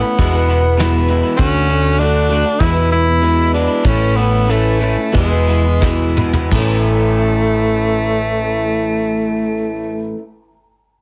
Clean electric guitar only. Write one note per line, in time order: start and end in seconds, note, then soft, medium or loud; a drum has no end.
0.00 0.16 A2 medium
0.00 muted clean electric guitar stroke soft
0.18 0.63 E2 medium
0.18 0.63 B2 medium
0.18 0.35 E3 medium
0.18 0.33 G#3 medium
0.18 0.32 B3 medium
0.18 0.32 E4 medium
0.33 0.46 E3 soft
0.33 0.47 G#3 medium
0.33 0.48 B3 medium
0.33 0.48 E4 medium
0.47 0.62 E3 medium
0.47 0.61 G#3 medium
0.47 0.61 B3 medium
0.47 0.61 E4 medium
0.62 muted clean electric guitar stroke soft
0.77 1.36 E2 medium
0.77 1.36 B2 medium
0.77 1.07 E3 medium
0.77 1.08 G#3 medium
0.77 1.09 B3 medium
0.77 1.10 E4 medium
1.09 1.24 E3 medium
1.09 1.24 G#3 medium
1.09 1.22 B3 medium
1.09 1.22 E4 medium
1.23 1.36 E3 soft
1.23 1.37 G#3 soft
1.23 1.37 B3 medium
1.23 1.36 E4 medium
1.36 1.67 D3 medium
1.36 1.67 A3 medium
1.36 1.68 D4 medium
1.36 1.69 F#4 medium
1.68 1.97 D3 medium
1.68 1.98 A3 medium
1.68 1.99 D4 medium
1.68 2.00 F#4 medium
1.98 2.29 D3 medium
1.98 2.30 A3 medium
1.98 2.31 D4 medium
1.98 2.31 F#4 medium
2.30 2.58 D3 medium
2.30 2.45 A3 medium
2.30 2.45 D4 medium
2.30 2.45 F#4 medium
2.46 muted clean electric guitar stroke soft
2.61 3.06 E2 medium
2.61 3.06 B2 medium
2.61 2.77 E3 medium
2.61 2.76 G#3 medium
2.61 2.75 B3 medium
2.61 2.75 E4 medium
2.76 2.90 E3 medium
2.76 2.91 G#3 soft
2.76 2.91 B3 medium
2.76 2.93 E4 medium
2.91 3.07 E3 medium
2.91 3.06 G#3 medium
2.91 3.06 B3 medium
2.91 3.06 E4 medium
3.07 muted clean electric guitar stroke soft
3.22 3.82 E2 medium
3.22 3.82 B2 medium
3.22 3.53 E3 medium
3.22 3.53 G#3 medium
3.22 3.54 B3 medium
3.22 3.55 E4 medium
3.54 3.70 E3 medium
3.54 3.68 G#3 medium
3.54 3.67 B3 medium
3.54 3.67 E4 medium
3.67 3.84 E3 soft
3.67 3.82 G#3 medium
3.67 3.82 B3 medium
3.67 3.86 E4 medium
3.84 4.47 A2 medium
3.84 4.15 E3 medium
3.84 4.16 A3 medium
3.84 4.17 C#4 medium
3.84 4.17 E4 medium
4.16 4.48 E3 medium
4.16 4.48 A3 medium
4.16 4.49 C#4 medium
4.16 4.49 E4 medium
4.48 5.11 A2 medium
4.48 4.79 E3 medium
4.48 4.80 A3 medium
4.48 4.82 C#4 medium
4.48 4.82 E4 medium
4.81 4.97 E3 medium
4.81 4.97 A3 medium
4.81 4.97 C#4 medium
4.81 4.97 E4 medium
4.98 muted clean electric guitar stroke soft
5.13 5.64 E2 medium
5.13 5.64 B2 medium
5.13 5.31 E3 medium
5.13 5.31 G#3 medium
5.13 5.30 B3 medium
5.13 5.28 E4 medium
5.29 5.46 E3 soft
5.29 5.47 G#3 soft
5.29 5.48 B3 soft
5.29 5.49 E4 medium
5.47 5.65 E3 medium
5.47 5.64 G#3 medium
5.47 5.64 B3 medium
5.47 5.64 E4 medium
5.65 muted clean electric guitar stroke soft
5.82 6.49 E2 medium
5.82 6.49 B2 medium
5.82 6.15 E3 medium
5.82 6.16 G#3 medium
5.82 6.17 B3 medium
5.82 6.18 E4 medium
6.16 6.35 E3 medium
6.16 6.34 G#3 medium
6.16 6.33 B3 medium
6.16 6.32 E4 medium
6.33 6.50 E3 soft
6.33 6.49 G#3 soft
6.33 6.49 B3 soft
6.33 6.49 E4 soft
6.51 10.15 A2 medium
6.51 10.16 E3 medium
6.51 10.17 A3 medium
6.51 10.18 C#4 medium
6.55 10.19 E4 medium